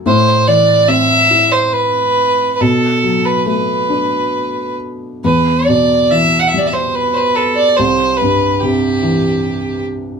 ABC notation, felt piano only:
X:1
M:3/4
L:1/8
Q:1/4=71
K:Em
V:1 name="Felt piano" clef=bass
A,, E, C E3 | B,, F, A, D3 | E,, B,, E, G,3 | C,, G,, C, E,3 |]